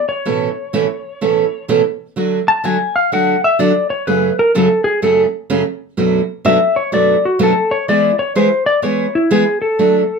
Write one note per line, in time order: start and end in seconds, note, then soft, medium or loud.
0.09 1.65 C#5 medium
0.25 0.48 A2 medium
0.25 0.48 B2 medium
0.25 0.48 E3 medium
0.25 0.48 A3 medium
0.25 0.48 C#4 medium
0.25 0.48 A4 medium
0.73 0.85 A2 medium
0.73 0.85 B2 medium
0.73 0.85 E3 medium
0.73 0.85 A3 medium
0.73 0.85 C#4 medium
0.73 0.86 A4 medium
1.21 1.44 A2 medium
1.21 1.44 B2 medium
1.21 1.44 E3 medium
1.21 1.44 A3 medium
1.21 1.44 C#4 medium
1.21 1.44 A4 medium
1.68 1.80 A2 medium
1.68 1.81 B2 medium
1.68 1.81 E3 medium
1.68 1.81 A3 medium
1.68 1.81 C#4 medium
1.68 1.81 A4 medium
2.16 2.39 D3 medium
2.16 2.39 F#3 medium
2.16 2.39 A3 medium
2.16 2.39 D4 medium
2.16 2.39 F#4 medium
2.48 2.64 A5 medium
2.64 2.76 D3 medium
2.64 2.76 F#3 medium
2.64 2.76 A3 medium
2.64 2.76 D4 medium
2.64 2.76 F#4 medium
2.64 2.95 G#5 medium
2.96 3.12 F5 medium
3.12 3.34 D3 medium
3.12 3.34 F#3 medium
3.12 3.35 A3 medium
3.12 3.35 D4 medium
3.12 3.35 F#4 medium
3.12 3.43 F#5 loud
3.44 3.60 E5 medium
3.59 3.71 D3 medium
3.59 3.71 F#3 medium
3.59 3.71 A3 medium
3.59 3.72 D4 medium
3.59 3.72 F#4 medium
3.59 3.90 D5 medium
3.90 4.06 C#5 medium
4.07 4.30 F#2 medium
4.07 4.30 C#3 medium
4.07 4.30 F#3 medium
4.07 4.30 A3 medium
4.07 4.30 C#4 medium
4.07 4.30 G#4 medium
4.07 4.38 B4 medium
4.39 4.55 A#4 medium
4.55 4.67 F#2 medium
4.55 4.67 C#3 medium
4.55 4.67 F#3 medium
4.55 4.67 A3 medium
4.55 4.67 C#4 medium
4.55 4.67 G#4 medium
4.55 4.84 A4 medium
4.84 5.01 G#4 medium
5.02 5.25 F#2 medium
5.02 5.25 C#3 medium
5.02 5.25 F#3 medium
5.02 5.25 A3 medium
5.02 5.25 C#4 medium
5.02 5.25 G#4 medium
5.02 5.22 A4 medium
5.50 5.62 F#2 medium
5.50 5.62 C#3 medium
5.50 5.62 F#3 medium
5.50 5.62 A3 medium
5.50 5.62 C#4 medium
5.50 5.62 G#4 medium
5.97 6.20 F#2 medium
5.97 6.20 B2 medium
5.97 6.20 F#3 medium
5.97 6.20 A3 medium
5.97 6.20 D4 medium
5.97 6.20 F#4 medium
6.45 6.57 F#2 medium
6.45 6.57 B2 medium
6.45 6.57 F#3 medium
6.45 6.57 A3 medium
6.45 6.57 D4 medium
6.45 6.57 F#4 medium
6.45 6.76 E5 medium
6.76 6.92 C#5 medium
6.92 7.15 F#2 medium
6.92 7.15 B2 medium
6.92 7.15 F#3 medium
6.92 7.15 A3 medium
6.92 7.15 D4 medium
6.92 7.15 F#4 medium
6.92 7.24 D5 loud
7.25 7.41 F#4 medium
7.39 7.52 F#2 medium
7.39 7.52 B2 medium
7.39 7.52 F#3 medium
7.39 7.52 A3 medium
7.39 7.52 D4 medium
7.39 7.52 F#4 medium
7.43 7.72 A4 medium
7.71 7.88 C#5 medium
7.88 8.11 E3 medium
7.88 8.11 G#3 medium
7.88 8.11 B3 medium
7.88 8.11 E4 medium
7.88 8.11 G#4 medium
7.88 8.19 D5 medium
8.19 8.35 C#5 medium
8.35 8.48 E3 medium
8.35 8.48 G#3 medium
8.35 8.48 B3 medium
8.35 8.48 E4 medium
8.35 8.48 G#4 medium
8.35 8.66 C5 medium
8.66 8.83 D5 loud
8.82 9.05 E3 medium
8.82 9.05 G#3 medium
8.82 9.05 B3 medium
8.82 9.06 E4 medium
8.82 9.06 G#4 medium
8.82 9.14 C#5 medium
9.15 9.31 E4 medium
9.31 9.43 E3 medium
9.31 9.43 G#3 medium
9.31 9.43 B3 medium
9.31 9.43 E4 medium
9.31 9.43 G#4 medium
9.31 9.61 G#4 medium
9.62 10.19 A4 medium
9.79 10.01 D3 medium
9.79 10.01 F#3 medium
9.79 10.01 A3 medium
9.79 10.01 D4 medium
9.79 10.02 F#4 medium